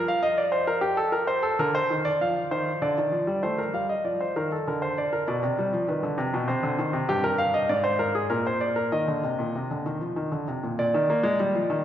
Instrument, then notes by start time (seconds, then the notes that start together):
grand piano
Already playing: F3
0.08 F5
0.23 D#5
0.38 D5
0.52 C5
0.67 A#4
0.81 G4
0.97 A4
1.12 A#4
1.27 C5
1.43 A4
1.59 D3 A#4
1.75 C5
1.90 D#3
2.05 D5
2.21 F3 F5
2.51 D#3 C5
2.82 D3 D5
2.98 D#3
3.11 F3
3.27 G3
3.43 A3 C5
3.58 A#4
3.74 G3 F5
3.89 D#5
4.04 F3 D5
4.21 C5
4.36 D#3 A#4
4.52 A4
4.68 D3 A#4
4.82 C5
4.98 D5
5.13 A#4
5.28 B2 D5
5.43 C3
5.59 G3
5.73 F3
5.89 D#3 B4
6.03 D3
6.18 C3
6.34 B2
6.48 C3 C5
6.63 D3
6.79 D#3
6.93 C3
7.09 G2 G4
7.24 A#4
7.38 F5
7.54 D#5
7.69 G#2 D5
7.84 C5
7.99 A#4
8.15 G#4
8.30 A#2 A#4
8.47 C5
8.61 D5
8.76 A#4
8.92 D#3 D#5
9.08 D3
9.24 C3
9.39 A#2
9.55 C3
9.71 D3
9.86 D#3
10.01 F3
10.16 D#3
10.32 D3
10.48 C3
10.63 A#2
10.79 A#2 D5
10.94 D#3
11.10 A#3
11.23 G#3
11.40 G3
11.55 F3
11.70 D#3